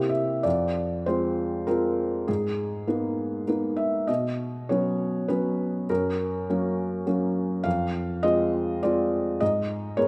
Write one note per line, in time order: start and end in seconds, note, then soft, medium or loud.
0.00 0.42 C3 soft
0.00 0.40 A#3 soft
0.00 0.41 C4 soft
0.00 0.41 E4 soft
0.00 0.11 G4 soft
0.09 0.43 E5 medium
0.43 1.05 F2 soft
0.43 1.06 D5 medium
1.06 1.64 G#3 soft
1.06 1.64 C4 soft
1.06 1.64 F4 soft
1.06 1.68 C5 medium
1.67 2.24 G#3 soft
1.67 2.24 C4 soft
1.67 2.24 F4 soft
1.67 2.28 A#4 medium
2.28 2.86 G#2 soft
2.28 3.48 G#4 medium
2.87 3.44 A#3 soft
2.87 3.44 B3 soft
2.87 3.44 D#4 soft
3.47 4.04 A#3 soft
3.47 4.05 B3 soft
3.47 4.05 D#4 soft
3.76 4.08 E5 medium
4.07 4.68 B2 soft
4.07 4.69 D#5 medium
4.69 5.25 F#3 soft
4.69 5.25 B3 soft
4.69 5.26 C#4 soft
4.69 5.29 C#5 medium
5.28 5.86 F#3 soft
5.28 5.86 B3 soft
5.28 5.86 C#4 soft
5.28 5.89 B4 medium
5.90 6.47 F#2 soft
5.90 7.06 A#4 medium
6.50 7.03 F#3 soft
6.50 7.03 A#3 soft
6.50 7.03 C#4 soft
7.06 7.61 F#3 soft
7.06 7.61 A#3 soft
7.06 7.61 C#4 soft
7.64 8.22 F2 medium
7.64 8.24 F5 medium
8.23 8.79 G#3 soft
8.23 8.79 C4 soft
8.23 8.79 F4 soft
8.23 8.82 D#5 medium
8.83 9.37 G#3 soft
8.83 9.37 C4 soft
8.83 9.37 F4 soft
8.83 9.41 D5 medium
9.40 9.97 G#2 soft
9.40 9.98 D#5 medium
9.97 10.08 G#3 soft
9.97 10.08 B3 soft
9.97 10.08 A#4 soft
9.97 10.08 C#5 medium